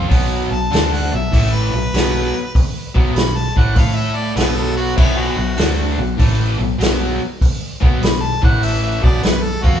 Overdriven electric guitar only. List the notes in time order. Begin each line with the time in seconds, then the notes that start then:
0.08 B2 F#3 B3
0.50 B2 F#3
0.71 D3 A3 D4
1.13 B2 F#3
1.32 A2 E3 A3
1.73 B2 F#3
1.94 B2 F#3 B3
2.95 B2 F#3 B3
3.15 B2 F#3
3.56 A2 E3 A3
3.76 A3 E4 A4
4.36 B2 F#3 B3
4.96 B2 F#3 B3
5.37 B2 F#3
5.57 D3 A3 D4
5.98 B2 F#3
6.17 A2 E3 A3
6.58 B2 F#3
6.79 B2 F#3 B3
7.81 B2 F#3 B3
8.01 B2 F#3
8.42 A2 E3 A3
9.02 B2 F#3 B3
9.23 B2 F#3
9.63 F3 C4 F4